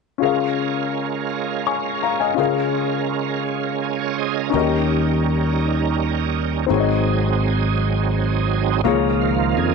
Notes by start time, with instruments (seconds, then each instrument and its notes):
0.18 grand piano C#3 C#4 F4 G#4
0.23 tonewheel organ G#3 C#4 F4 A#4, grand piano A#4 F5
1.67 grand piano G#5 C#6
2.03 grand piano F5 A#5
2.20 grand piano D#5 G#5
2.34 grand piano C#3 C#4 F4 G#4, tonewheel organ C#3 G#3 C4 F4 A#4
2.39 grand piano A#4 F5
2.44 tonewheel organ C#4
3.63 tonewheel organ A#4
3.82 tonewheel organ G#5
3.99 tonewheel organ A#4 C#5
4.18 tonewheel organ G#4 C5 D#5
4.36 tonewheel organ A#4
4.50 fingered electric bass D#2, grand piano D#3 C#4 D#4 F#4, tonewheel organ G3 C#4 D#4 A#4
4.55 grand piano A#4 D#5
4.61 grand piano G4
6.67 fingered electric bass G#1, grand piano G#2 C4 D#4 F#4, tonewheel organ F#3 C4 D#4
6.71 tonewheel organ G#4, grand piano G#4 C#5
6.80 grand piano D#5
8.84 fingered electric bass C#2, grand piano C#3 A#3 C#4 F4 G#4 C#5, tonewheel organ D#3 F3 A#3
9.21 tonewheel organ F4
9.57 fingered electric bass F2, tonewheel organ G#4